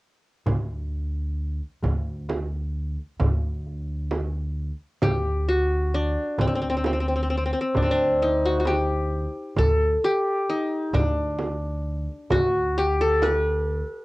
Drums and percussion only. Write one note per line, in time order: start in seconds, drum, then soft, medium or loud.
0.46 darbuka dum medium
0.46 frame drum medium
1.83 darbuka dum medium
1.83 frame drum medium
2.29 darbuka tek medium
2.29 frame drum medium
3.20 frame drum medium
3.20 darbuka dum medium
3.66 darbuka ka soft
4.11 darbuka tek medium
4.11 frame drum medium
5.02 frame drum medium
5.02 darbuka dum medium
5.93 darbuka ka soft
6.38 darbuka dum medium
6.38 frame drum medium
6.84 darbuka tek medium
6.84 frame drum medium
7.75 frame drum medium
7.75 darbuka dum medium
8.65 darbuka tek medium
8.65 frame drum medium
9.57 darbuka dum medium
9.57 frame drum medium
10.47 darbuka ka soft
10.93 darbuka dum medium
10.93 frame drum medium
11.39 frame drum medium
12.30 darbuka dum medium
12.30 frame drum medium
13.22 darbuka tek medium
13.22 frame drum medium